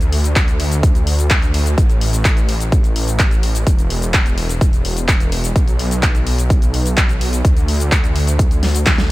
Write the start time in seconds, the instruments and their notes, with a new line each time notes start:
Already playing: detuned saw bass D2
0.01 closed hi-hat, cabasa
0.12 open hi-hat
0.24 closed hi-hat, cabasa
0.36 kick, clap, closed hi-hat, cabasa
0.48 closed hi-hat, cabasa
0.60 open hi-hat
0.72 closed hi-hat, cabasa
0.83 kick, closed hi-hat, cabasa
0.95 closed hi-hat, cabasa
1.07 open hi-hat
1.19 closed hi-hat, cabasa
1.30 kick, clap, closed hi-hat, cabasa
1.42 closed hi-hat, cabasa
1.54 open hi-hat
1.66 closed hi-hat, cabasa
1.78 detuned saw bass A1, kick, closed hi-hat, cabasa
1.90 closed hi-hat, cabasa
2.01 open hi-hat
2.13 closed hi-hat, cabasa
2.25 kick, clap, closed hi-hat, cabasa
2.37 closed hi-hat, cabasa
2.49 open hi-hat
2.60 closed hi-hat, cabasa
2.72 kick, closed hi-hat, cabasa
2.84 closed hi-hat, cabasa
2.96 open hi-hat
3.08 closed hi-hat, cabasa
3.19 kick, clap, closed hi-hat, cabasa
3.31 closed hi-hat, cabasa
3.43 open hi-hat
3.55 closed hi-hat, cabasa
3.67 detuned saw bass E1, kick, closed hi-hat, cabasa
3.79 closed hi-hat, cabasa
3.90 open hi-hat
4.02 closed hi-hat, cabasa
4.14 kick, clap, closed hi-hat, cabasa
4.26 closed hi-hat, cabasa
4.38 open hi-hat
4.49 closed hi-hat, cabasa
4.61 kick, closed hi-hat, cabasa
4.73 closed hi-hat, cabasa
4.85 open hi-hat
4.97 closed hi-hat, cabasa
5.08 kick, clap, closed hi-hat, cabasa
5.20 closed hi-hat, cabasa
5.32 open hi-hat
5.44 closed hi-hat, cabasa
5.56 detuned saw bass B1, kick, closed hi-hat, cabasa
5.68 closed hi-hat, cabasa
5.79 open hi-hat
5.91 closed hi-hat, cabasa
6.03 kick, clap, closed hi-hat, cabasa
6.15 closed hi-hat, cabasa
6.27 open hi-hat
6.38 closed hi-hat, cabasa
6.50 kick, closed hi-hat, cabasa
6.62 closed hi-hat, cabasa
6.74 open hi-hat
6.86 closed hi-hat, cabasa
6.97 kick, clap, closed hi-hat, cabasa
7.09 closed hi-hat, cabasa
7.21 open hi-hat
7.33 closed hi-hat, cabasa
7.45 detuned saw bass D2, kick, closed hi-hat, cabasa
7.57 closed hi-hat, cabasa
7.68 open hi-hat
7.80 closed hi-hat, cabasa
7.92 kick, clap, closed hi-hat, cabasa
8.04 closed hi-hat, cabasa
8.16 open hi-hat
8.27 closed hi-hat, cabasa
8.39 kick, closed hi-hat, cabasa
8.51 closed hi-hat, cabasa
8.63 snare, open hi-hat
8.75 closed hi-hat, cabasa
8.86 kick, snare, clap, closed hi-hat, cabasa
8.98 snare, closed hi-hat, cabasa